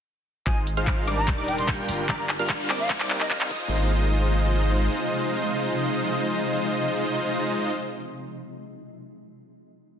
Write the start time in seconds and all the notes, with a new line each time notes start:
0.47 G#1 G#3 D#4 F4 C5 D#5 G#5 D#6, kick, clap, closed hi-hat, riser
0.67 closed hi-hat
0.77 G#3 D#4 F4 C5 F5 F6, closed hi-hat
0.87 kick, clap, closed hi-hat
1.07 G3 D4 D#4 A#4 D5 D6, closed hi-hat
1.18 A#5
1.28 G3 A#3 D4, kick, clap, closed hi-hat
1.38 G3 D4 D#4 A#4 D5 D6
1.48 G5, closed hi-hat
1.58 C6, closed hi-hat
1.68 G3 D4 F4 A#4 G6, kick, clap, closed hi-hat
1.89 G1, open hi-hat
2.09 G3 D4 D5 A#5 D6, kick, clap, closed hi-hat
2.19 A#5
2.29 clap, closed hi-hat
2.39 G3 D4 F4 A#4 F5 F6, closed hi-hat
2.49 kick, clap, closed hi-hat
2.70 G3 C4 D#4 A#4 D5 D6, clap, closed hi-hat
2.80 F5
2.90 C2, kick, clap, closed hi-hat
3.00 G3 C4 D#4 A#4 D5 D6, clap
3.10 clap, closed hi-hat
3.20 D#5, clap, closed hi-hat
3.30 G3 C4 D#4 D#5 F5 F6, kick, clap, closed hi-hat
3.41 clap
3.51 G#1 C3 F3 G#3 D#4 F4 C5 D#5 D#6, kick, crash